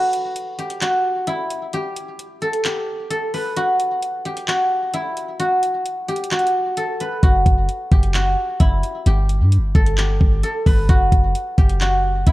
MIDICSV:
0, 0, Header, 1, 4, 480
1, 0, Start_track
1, 0, Tempo, 458015
1, 1816, Time_signature, 4, 2, 24, 8
1, 12916, End_track
2, 0, Start_track
2, 0, Title_t, "Guzheng"
2, 0, Program_c, 0, 107
2, 0, Note_on_c, 0, 64, 85
2, 0, Note_on_c, 0, 66, 93
2, 0, Note_on_c, 0, 69, 84
2, 0, Note_on_c, 0, 71, 77
2, 234, Note_off_c, 0, 64, 0
2, 616, Note_on_c, 0, 67, 82
2, 679, Note_off_c, 0, 66, 0
2, 856, Note_on_c, 0, 66, 83
2, 919, Note_off_c, 0, 67, 0
2, 1335, Note_on_c, 0, 64, 95
2, 1718, Note_off_c, 0, 69, 0
2, 1810, Note_off_c, 0, 71, 0
2, 1820, Note_on_c, 0, 67, 100
2, 1883, Note_off_c, 0, 66, 0
2, 2535, Note_on_c, 0, 69, 81
2, 2774, Note_off_c, 0, 67, 0
2, 2778, Note_on_c, 0, 67, 81
2, 3248, Note_off_c, 0, 69, 0
2, 3253, Note_on_c, 0, 69, 76
2, 3498, Note_on_c, 0, 71, 82
2, 3737, Note_on_c, 0, 66, 106
2, 3800, Note_off_c, 0, 67, 0
2, 4073, Note_off_c, 0, 64, 0
2, 4457, Note_on_c, 0, 67, 81
2, 4519, Note_off_c, 0, 66, 0
2, 4695, Note_on_c, 0, 66, 87
2, 4758, Note_off_c, 0, 67, 0
2, 5177, Note_on_c, 0, 64, 90
2, 5554, Note_off_c, 0, 69, 0
2, 5646, Note_off_c, 0, 71, 0
2, 5651, Note_off_c, 0, 66, 0
2, 5655, Note_on_c, 0, 66, 106
2, 6376, Note_on_c, 0, 67, 82
2, 6439, Note_off_c, 0, 66, 0
2, 6617, Note_on_c, 0, 66, 85
2, 6680, Note_off_c, 0, 67, 0
2, 7096, Note_on_c, 0, 69, 83
2, 7342, Note_on_c, 0, 71, 78
2, 7575, Note_off_c, 0, 66, 0
2, 7579, Note_on_c, 0, 66, 93
2, 7914, Note_off_c, 0, 64, 0
2, 8296, Note_on_c, 0, 67, 83
2, 8359, Note_off_c, 0, 66, 0
2, 8535, Note_on_c, 0, 66, 81
2, 8598, Note_off_c, 0, 67, 0
2, 9015, Note_on_c, 0, 64, 90
2, 9397, Note_off_c, 0, 69, 0
2, 9489, Note_off_c, 0, 71, 0
2, 9501, Note_on_c, 0, 67, 100
2, 9563, Note_off_c, 0, 66, 0
2, 10215, Note_on_c, 0, 69, 82
2, 10454, Note_off_c, 0, 67, 0
2, 10458, Note_on_c, 0, 67, 85
2, 10929, Note_off_c, 0, 69, 0
2, 10933, Note_on_c, 0, 69, 77
2, 11178, Note_on_c, 0, 71, 81
2, 11416, Note_on_c, 0, 66, 99
2, 11479, Note_off_c, 0, 67, 0
2, 11752, Note_off_c, 0, 64, 0
2, 12137, Note_on_c, 0, 67, 80
2, 12200, Note_off_c, 0, 66, 0
2, 12376, Note_on_c, 0, 66, 89
2, 12439, Note_off_c, 0, 67, 0
2, 12858, Note_on_c, 0, 64, 90
2, 12916, Note_off_c, 0, 64, 0
2, 12916, Note_off_c, 0, 66, 0
2, 12916, Note_off_c, 0, 69, 0
2, 12916, Note_off_c, 0, 71, 0
2, 12916, End_track
3, 0, Start_track
3, 0, Title_t, "808-style bass"
3, 0, Program_c, 1, 38
3, 7577, Note_on_c, 1, 30, 109
3, 7807, Note_off_c, 1, 30, 0
3, 7817, Note_on_c, 1, 30, 108
3, 8047, Note_off_c, 1, 30, 0
3, 8296, Note_on_c, 1, 30, 105
3, 8757, Note_off_c, 1, 30, 0
3, 9016, Note_on_c, 1, 30, 108
3, 9247, Note_off_c, 1, 30, 0
3, 9496, Note_on_c, 1, 31, 101
3, 9856, Note_on_c, 1, 43, 98
3, 9872, Note_off_c, 1, 31, 0
3, 10036, Note_on_c, 1, 31, 96
3, 10052, Note_off_c, 1, 43, 0
3, 10207, Note_off_c, 1, 31, 0
3, 10216, Note_on_c, 1, 31, 109
3, 10677, Note_off_c, 1, 31, 0
3, 10696, Note_on_c, 1, 31, 103
3, 10926, Note_off_c, 1, 31, 0
3, 11176, Note_on_c, 1, 31, 105
3, 11406, Note_off_c, 1, 31, 0
3, 11416, Note_on_c, 1, 30, 105
3, 11647, Note_off_c, 1, 30, 0
3, 11657, Note_on_c, 1, 30, 104
3, 11887, Note_off_c, 1, 30, 0
3, 12136, Note_on_c, 1, 30, 105
3, 12827, Note_off_c, 1, 30, 0
3, 12857, Note_on_c, 1, 30, 108
3, 12916, Note_off_c, 1, 30, 0
3, 12916, End_track
4, 0, Start_track
4, 0, Title_t, "Drums"
4, 138, Note_on_c, 9, 42, 76
4, 242, Note_off_c, 9, 42, 0
4, 377, Note_on_c, 9, 42, 69
4, 481, Note_off_c, 9, 42, 0
4, 616, Note_on_c, 9, 42, 41
4, 721, Note_off_c, 9, 42, 0
4, 736, Note_on_c, 9, 42, 68
4, 840, Note_off_c, 9, 42, 0
4, 855, Note_on_c, 9, 39, 110
4, 862, Note_on_c, 9, 42, 89
4, 960, Note_off_c, 9, 39, 0
4, 967, Note_off_c, 9, 42, 0
4, 1334, Note_on_c, 9, 42, 79
4, 1439, Note_off_c, 9, 42, 0
4, 1578, Note_on_c, 9, 42, 66
4, 1683, Note_off_c, 9, 42, 0
4, 1815, Note_on_c, 9, 42, 79
4, 1920, Note_off_c, 9, 42, 0
4, 2058, Note_on_c, 9, 42, 76
4, 2163, Note_off_c, 9, 42, 0
4, 2297, Note_on_c, 9, 42, 70
4, 2401, Note_off_c, 9, 42, 0
4, 2536, Note_on_c, 9, 42, 41
4, 2641, Note_off_c, 9, 42, 0
4, 2656, Note_on_c, 9, 42, 71
4, 2761, Note_off_c, 9, 42, 0
4, 2776, Note_on_c, 9, 39, 111
4, 2783, Note_on_c, 9, 42, 87
4, 2881, Note_off_c, 9, 39, 0
4, 2887, Note_off_c, 9, 42, 0
4, 3255, Note_on_c, 9, 42, 78
4, 3359, Note_off_c, 9, 42, 0
4, 3498, Note_on_c, 9, 46, 52
4, 3603, Note_off_c, 9, 46, 0
4, 3735, Note_on_c, 9, 42, 80
4, 3840, Note_off_c, 9, 42, 0
4, 3978, Note_on_c, 9, 42, 74
4, 4082, Note_off_c, 9, 42, 0
4, 4216, Note_on_c, 9, 42, 71
4, 4321, Note_off_c, 9, 42, 0
4, 4456, Note_on_c, 9, 42, 42
4, 4560, Note_off_c, 9, 42, 0
4, 4576, Note_on_c, 9, 42, 70
4, 4681, Note_off_c, 9, 42, 0
4, 4695, Note_on_c, 9, 39, 109
4, 4702, Note_on_c, 9, 42, 89
4, 4800, Note_off_c, 9, 39, 0
4, 4807, Note_off_c, 9, 42, 0
4, 5174, Note_on_c, 9, 42, 80
4, 5279, Note_off_c, 9, 42, 0
4, 5418, Note_on_c, 9, 42, 67
4, 5522, Note_off_c, 9, 42, 0
4, 5656, Note_on_c, 9, 42, 77
4, 5760, Note_off_c, 9, 42, 0
4, 5898, Note_on_c, 9, 42, 76
4, 6003, Note_off_c, 9, 42, 0
4, 6137, Note_on_c, 9, 42, 69
4, 6242, Note_off_c, 9, 42, 0
4, 6376, Note_on_c, 9, 42, 58
4, 6457, Note_off_c, 9, 42, 0
4, 6457, Note_on_c, 9, 42, 57
4, 6536, Note_off_c, 9, 42, 0
4, 6536, Note_on_c, 9, 42, 59
4, 6616, Note_off_c, 9, 42, 0
4, 6616, Note_on_c, 9, 39, 108
4, 6616, Note_on_c, 9, 42, 57
4, 6696, Note_off_c, 9, 42, 0
4, 6696, Note_on_c, 9, 42, 58
4, 6721, Note_off_c, 9, 39, 0
4, 6776, Note_off_c, 9, 42, 0
4, 6776, Note_on_c, 9, 42, 57
4, 6881, Note_off_c, 9, 42, 0
4, 7094, Note_on_c, 9, 42, 79
4, 7199, Note_off_c, 9, 42, 0
4, 7338, Note_on_c, 9, 42, 67
4, 7443, Note_off_c, 9, 42, 0
4, 7576, Note_on_c, 9, 42, 76
4, 7577, Note_on_c, 9, 36, 125
4, 7681, Note_off_c, 9, 36, 0
4, 7681, Note_off_c, 9, 42, 0
4, 7817, Note_on_c, 9, 36, 93
4, 7818, Note_on_c, 9, 42, 72
4, 7922, Note_off_c, 9, 36, 0
4, 7923, Note_off_c, 9, 42, 0
4, 8057, Note_on_c, 9, 42, 72
4, 8162, Note_off_c, 9, 42, 0
4, 8296, Note_on_c, 9, 36, 102
4, 8296, Note_on_c, 9, 42, 43
4, 8401, Note_off_c, 9, 36, 0
4, 8401, Note_off_c, 9, 42, 0
4, 8416, Note_on_c, 9, 42, 72
4, 8521, Note_off_c, 9, 42, 0
4, 8536, Note_on_c, 9, 39, 108
4, 8542, Note_on_c, 9, 42, 87
4, 8641, Note_off_c, 9, 39, 0
4, 8647, Note_off_c, 9, 42, 0
4, 9014, Note_on_c, 9, 42, 78
4, 9016, Note_on_c, 9, 36, 93
4, 9119, Note_off_c, 9, 42, 0
4, 9121, Note_off_c, 9, 36, 0
4, 9258, Note_on_c, 9, 42, 66
4, 9363, Note_off_c, 9, 42, 0
4, 9496, Note_on_c, 9, 42, 82
4, 9601, Note_off_c, 9, 42, 0
4, 9738, Note_on_c, 9, 42, 75
4, 9843, Note_off_c, 9, 42, 0
4, 9977, Note_on_c, 9, 42, 69
4, 10082, Note_off_c, 9, 42, 0
4, 10216, Note_on_c, 9, 36, 100
4, 10216, Note_on_c, 9, 42, 43
4, 10321, Note_off_c, 9, 36, 0
4, 10321, Note_off_c, 9, 42, 0
4, 10336, Note_on_c, 9, 42, 71
4, 10441, Note_off_c, 9, 42, 0
4, 10455, Note_on_c, 9, 39, 109
4, 10462, Note_on_c, 9, 42, 93
4, 10560, Note_off_c, 9, 39, 0
4, 10567, Note_off_c, 9, 42, 0
4, 10696, Note_on_c, 9, 36, 90
4, 10801, Note_off_c, 9, 36, 0
4, 10934, Note_on_c, 9, 42, 77
4, 11038, Note_off_c, 9, 42, 0
4, 11176, Note_on_c, 9, 36, 101
4, 11178, Note_on_c, 9, 46, 51
4, 11281, Note_off_c, 9, 36, 0
4, 11283, Note_off_c, 9, 46, 0
4, 11415, Note_on_c, 9, 42, 77
4, 11416, Note_on_c, 9, 36, 122
4, 11520, Note_off_c, 9, 42, 0
4, 11521, Note_off_c, 9, 36, 0
4, 11657, Note_on_c, 9, 36, 88
4, 11658, Note_on_c, 9, 42, 73
4, 11762, Note_off_c, 9, 36, 0
4, 11763, Note_off_c, 9, 42, 0
4, 11897, Note_on_c, 9, 42, 69
4, 12001, Note_off_c, 9, 42, 0
4, 12136, Note_on_c, 9, 36, 99
4, 12136, Note_on_c, 9, 42, 43
4, 12240, Note_off_c, 9, 42, 0
4, 12241, Note_off_c, 9, 36, 0
4, 12256, Note_on_c, 9, 42, 71
4, 12361, Note_off_c, 9, 42, 0
4, 12376, Note_on_c, 9, 39, 110
4, 12383, Note_on_c, 9, 42, 91
4, 12481, Note_off_c, 9, 39, 0
4, 12487, Note_off_c, 9, 42, 0
4, 12854, Note_on_c, 9, 42, 80
4, 12856, Note_on_c, 9, 36, 94
4, 12916, Note_off_c, 9, 36, 0
4, 12916, Note_off_c, 9, 42, 0
4, 12916, End_track
0, 0, End_of_file